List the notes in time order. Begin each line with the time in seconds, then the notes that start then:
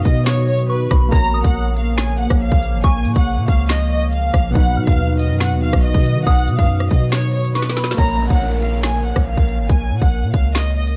Already playing: B2 D#3 F#3 B3 D#4 F#4 B4 D#6
0.05 B2 D#5, kick, closed hi-hat
0.26 C#5, finger snap, snare, closed hi-hat
0.48 C#5
0.59 closed hi-hat
0.69 B4 C#6
0.91 B1 B5, kick, cross-stick, closed hi-hat
1.09 A#1 C#3 F3 A#3 A#4 A#5, kick, closed hi-hat
1.14 C#5
1.34 D#6
1.44 A#1 F#5, kick, closed hi-hat
1.76 F5, closed hi-hat
1.98 G#5, finger snap, snare, closed hi-hat
2.19 F#5
2.30 A#1, kick, cross-stick, closed hi-hat
2.41 F5
2.52 A#1, kick
2.63 closed hi-hat
2.73 G#1
2.84 A#1 G#5 C#6, kick, closed hi-hat
3.05 A#2, closed hi-hat
3.16 A#1 F#5, kick, closed hi-hat
3.37 A#2
3.48 C#2 F5, kick, closed hi-hat
3.69 D#5, finger snap, snare, closed hi-hat
3.91 D#5
4.02 closed hi-hat
4.12 F5, closed hi-hat
4.34 A#1, kick, cross-stick, closed hi-hat
4.51 B2 F#3
4.55 B1 D#3 B3 D#4 F#4 B4 F#5, kick, closed hi-hat
4.77 B2 F6
4.87 D#2 F5, kick, closed hi-hat
5.19 D#5, closed hi-hat
5.30 F#2
5.41 F#5, finger snap, snare, closed hi-hat
5.52 D#2
5.62 F5
5.73 B1, kick, cross-stick, closed hi-hat
5.84 D#5
5.94 B2, kick
6.06 closed hi-hat
6.16 D#3
6.26 B1 F#5 D#6, kick, closed hi-hat
6.48 B2, closed hi-hat
6.59 F#2 F5, kick, closed hi-hat
6.80 cross-stick
6.91 B2 D#5, kick, closed hi-hat
7.12 C#5, finger snap, snare, closed hi-hat
7.34 C#5
7.45 closed hi-hat
7.55 B4 C#6, snare
7.62 snare
7.70 snare
7.77 B5, snare, closed hi-hat
7.84 snare
7.91 A#3, snare
7.97 A#1 A#4 C#5 A#5, kick, closed hi-hat, downlifter
8.30 A#1 F#5, kick, closed hi-hat
8.62 F5, closed hi-hat
8.83 G#5, finger snap, snare, closed hi-hat
9.05 F#5
9.16 A#1, kick, cross-stick, closed hi-hat
9.26 F5
9.37 A#1, kick
9.48 closed hi-hat
9.59 G#1
9.69 A#1 G#5, kick, closed hi-hat
9.91 A#2
10.01 A#1 F#5, kick, closed hi-hat
10.23 A#2
10.33 C#2 F5, kick, closed hi-hat
10.55 D#5, finger snap, snare, closed hi-hat
10.77 D#5
10.87 closed hi-hat